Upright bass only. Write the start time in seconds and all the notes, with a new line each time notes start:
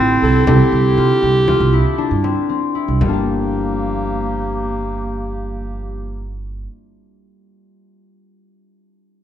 0.00 A1
0.22 C2
0.48 C2
0.72 C2
0.98 C3
1.22 C2
1.60 C2
2.11 G2
2.88 C2
3.01 G1